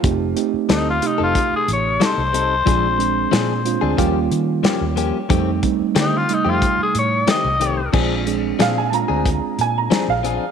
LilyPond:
<<
  \new Staff \with { instrumentName = "Upright piano" } { \time 4/4 \key bes \mixolydian \tempo 4 = 91 f'8. r2. r16 | r1 | r1 | r4 f''16 aes''16 <a'' bes''>4 aes''16 bes''8 f''8. | }
  \new Staff \with { instrumentName = "Tenor saxophone" } { \time 4/4 \key bes \mixolydian r4 ees'16 f'16 ees'16 f'8 aes'16 des''8 c''4~ | c''2 r2 | r4 ees'16 f'16 ees'16 f'8 aes'16 des''8 ees''4 | r1 | }
  \new Staff \with { instrumentName = "Clean electric guitar" } { \time 4/4 \key bes \mixolydian r4 <g c' ees' a'>16 r8 <c' ees' a'>16 r4 <g c' ees' a'>16 r16 <g c' ees' a'>16 r16 | <f c' d' aes'>16 r8. <f c' d' aes'>16 r8 <c' d' aes'>16 <f bes des' g'>16 r8. <f bes des' g'>16 r16 <f bes des' g'>16 r16 | <ees a c' g'>16 r8. <ees a c' g'>16 r8 <a c' g'>16 r4 <ees a c' g'>16 r16 <ees a c' g'>16 r16 | <f c' d' aes'>16 r8. <f c' d' aes'>16 r8 <c' d' aes'>16 r4 <f c' d' aes'>16 r16 <f c' d' aes'>16 r16 | }
  \new Staff \with { instrumentName = "Reed electric piano" } { \time 4/4 \key bes \mixolydian <a c' ees' g'>8 <a c' ees' g'>4 <c a ees' g'>2 r8 | <aes c' d' f'>8 <aes c' d' aes'>4 <aes c' d' f'>8 <g bes des' f'>2 | <g a c' ees'>8 <g a c' ees'>4 <c g a ees'>2 r8 | <aes c' d' f'>8 <aes c' d' aes'>4 <aes c' d' f'>2 r8 | }
  \new Staff \with { instrumentName = "Fingered electric bass" } { \clef bass \time 4/4 \key bes \mixolydian f,,8 r8 d,8 r16 f,,16 r8 a,,8 r16 c,8. | bes,,4 bes,8. d,16 ees,8 ees8 r16 ees,8 r16 | f,8 r8 d8 r16 f,16 r8 a,8 r16 c,8. | bes,,4 bes,8. d,8 r16 bes,8 r16 bes,,8 r16 | }
  \new DrumStaff \with { instrumentName = "Drums" } \drummode { \time 4/4 <hh bd>8 hh8 <hh sn>8 hh8 <hh bd>8 hh8 <hh sn>8 hh8 | <hh bd>8 hh8 <hh sn>8 hh8 <hh bd>8 hh8 <hh sn>8 hh8 | <hh bd>8 <hh bd>8 <hh sn>8 hh8 <hh bd>8 hh8 <hh sn>8 hh8 | <cymc bd>8 hh8 <hh sn>8 hh8 <hh bd>8 hh8 <hh sn>8 hh8 | }
>>